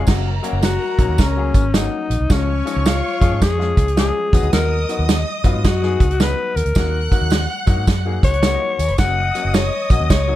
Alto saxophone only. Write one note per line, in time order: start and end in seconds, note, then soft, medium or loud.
0.64 1.22 F#4 medium
1.21 1.77 C#4 medium
1.76 2.34 D#4 medium
2.32 2.89 C#4 medium
2.87 3.42 F4 loud
3.43 3.94 G#4 medium
3.99 4.50 G#4 loud
4.53 5.05 A#4 medium
5.67 6.24 F#4 medium
6.22 6.58 B4 loud
6.56 7.32 A#4 medium
8.24 8.95 C#5 loud
8.99 9.56 F#5 loud
9.55 9.92 C#5 medium
9.91 10.11 D#5 medium
10.10 10.36 C#5 loud